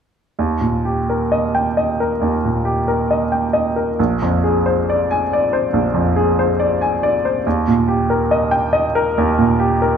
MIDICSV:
0, 0, Header, 1, 2, 480
1, 0, Start_track
1, 0, Key_signature, -3, "major"
1, 0, Tempo, 934579
1, 190, Time_signature, 4, 2, 24, 8
1, 667, Tempo, 892857
1, 2587, Tempo, 860832
1, 5432, End_track
2, 0, Start_track
2, 0, Title_t, "Grand piano"
2, 0, Program_c, 0, 0
2, 198, Note_on_c, 0, 39, 35
2, 286, Control_c, 0, 64, 127
2, 313, Note_on_c, 0, 46, 25
2, 437, Note_on_c, 0, 67, 24
2, 503, Note_off_c, 0, 46, 0
2, 563, Note_on_c, 0, 70, 25
2, 623, Note_off_c, 0, 67, 0
2, 677, Note_on_c, 0, 75, 32
2, 747, Note_off_c, 0, 70, 0
2, 800, Note_on_c, 0, 79, 35
2, 867, Note_off_c, 0, 75, 0
2, 921, Note_on_c, 0, 75, 31
2, 989, Note_off_c, 0, 79, 0
2, 1045, Note_on_c, 0, 70, 31
2, 1108, Note_off_c, 0, 75, 0
2, 1134, Note_off_c, 0, 39, 0
2, 1158, Note_on_c, 0, 39, 35
2, 1229, Note_off_c, 0, 70, 0
2, 1284, Note_on_c, 0, 46, 27
2, 1394, Note_on_c, 0, 67, 30
2, 1468, Note_off_c, 0, 46, 0
2, 1517, Note_on_c, 0, 70, 31
2, 1583, Note_off_c, 0, 67, 0
2, 1639, Note_on_c, 0, 75, 28
2, 1705, Note_off_c, 0, 70, 0
2, 1753, Note_on_c, 0, 79, 28
2, 1827, Note_off_c, 0, 75, 0
2, 1869, Note_on_c, 0, 75, 29
2, 1943, Note_off_c, 0, 79, 0
2, 1991, Note_on_c, 0, 70, 23
2, 2061, Note_off_c, 0, 75, 0
2, 2092, Note_off_c, 0, 39, 0
2, 2111, Note_off_c, 0, 70, 0
2, 2116, Note_on_c, 0, 34, 41
2, 2118, Control_c, 0, 64, 0
2, 2208, Control_c, 0, 64, 127
2, 2239, Note_on_c, 0, 41, 28
2, 2354, Note_on_c, 0, 68, 31
2, 2426, Note_off_c, 0, 41, 0
2, 2473, Note_on_c, 0, 72, 30
2, 2543, Note_off_c, 0, 68, 0
2, 2601, Note_on_c, 0, 74, 34
2, 2663, Note_off_c, 0, 72, 0
2, 2719, Note_on_c, 0, 80, 38
2, 2788, Note_off_c, 0, 74, 0
2, 2844, Note_on_c, 0, 74, 39
2, 2905, Note_off_c, 0, 80, 0
2, 2955, Note_on_c, 0, 72, 33
2, 3026, Note_off_c, 0, 74, 0
2, 3047, Note_off_c, 0, 34, 0
2, 3069, Note_on_c, 0, 34, 40
2, 3140, Note_off_c, 0, 72, 0
2, 3185, Note_on_c, 0, 41, 33
2, 3308, Note_on_c, 0, 68, 34
2, 3376, Note_off_c, 0, 41, 0
2, 3434, Note_on_c, 0, 72, 33
2, 3498, Note_off_c, 0, 68, 0
2, 3549, Note_on_c, 0, 74, 35
2, 3622, Note_off_c, 0, 72, 0
2, 3671, Note_on_c, 0, 80, 33
2, 3740, Note_off_c, 0, 74, 0
2, 3793, Note_on_c, 0, 74, 41
2, 3861, Note_off_c, 0, 80, 0
2, 3915, Note_on_c, 0, 72, 31
2, 3982, Note_off_c, 0, 74, 0
2, 4005, Note_off_c, 0, 34, 0
2, 4030, Note_off_c, 0, 72, 0
2, 4033, Note_on_c, 0, 39, 42
2, 4037, Control_c, 0, 64, 0
2, 4132, Control_c, 0, 64, 127
2, 4152, Note_on_c, 0, 46, 31
2, 4266, Note_on_c, 0, 67, 34
2, 4336, Note_off_c, 0, 46, 0
2, 4387, Note_on_c, 0, 70, 31
2, 4452, Note_off_c, 0, 67, 0
2, 4506, Note_on_c, 0, 75, 40
2, 4573, Note_off_c, 0, 70, 0
2, 4618, Note_on_c, 0, 79, 43
2, 4693, Note_off_c, 0, 75, 0
2, 4738, Note_on_c, 0, 75, 42
2, 4809, Note_off_c, 0, 79, 0
2, 4864, Note_on_c, 0, 70, 45
2, 4930, Note_off_c, 0, 75, 0
2, 4959, Note_off_c, 0, 39, 0
2, 4988, Note_on_c, 0, 39, 42
2, 5054, Note_off_c, 0, 70, 0
2, 5104, Note_on_c, 0, 46, 38
2, 5222, Note_on_c, 0, 67, 38
2, 5298, Note_off_c, 0, 46, 0
2, 5346, Note_on_c, 0, 70, 36
2, 5419, Note_off_c, 0, 67, 0
2, 5432, Note_off_c, 0, 39, 0
2, 5432, Note_off_c, 0, 70, 0
2, 5432, End_track
0, 0, End_of_file